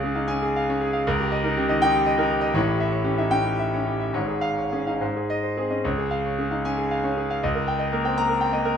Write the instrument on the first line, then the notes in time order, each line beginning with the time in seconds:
grand piano
Already playing: C#2 G#4 C#5 F5
0.03 C#4 G#4
0.15 D#4 F5
0.28 C#4 G#5
0.42 G#4
0.56 F5
0.69 C#4 C#5
0.81 G#4
0.93 F5
1.07 C#2 A#4
1.20 G4
1.32 D#5
1.44 D#4 A#4
1.57 C#3 G4
1.69 D#3 D#5
1.82 D#4 G5
1.94 G4
2.06 D#5
2.18 D#4 A#4
2.30 G4
2.41 D#5
2.53 A1 A2 C#5
2.68 G4
2.80 E5
2.92 C#5
3.04 C#4 G4
3.18 D#4 E5
3.31 C#4 G5
3.45 G4
3.59 E5
3.74 C#4 C#5
3.86 G4
4.00 E5
4.13 G#1 G#2 C#5
4.28 G#4
4.41 F5
4.58 C#5
4.72 C#4 G#4
4.87 D#4 F5
5.01 G#2 C5
5.16 G#4
5.30 D#5
5.43 C5
5.57 C4 G#4
5.70 C#4 D#5
5.84 C#2 C#5
5.98 G#4
6.11 F5
6.26 C#5
6.39 C#4 G#4
6.51 D#4 F5
6.65 C#4 G#5
6.78 G#4
6.91 F5
7.04 C#4 C#5
7.17 G#4
7.30 F5
7.43 C#2 D#5
7.55 A#4
7.67 G5
7.79 D#5
7.92 A#3 A#4
8.04 C4 G5
8.17 A#3 A#5
8.29 A#4
8.41 G5
8.53 A#3 D#5
8.65 A#4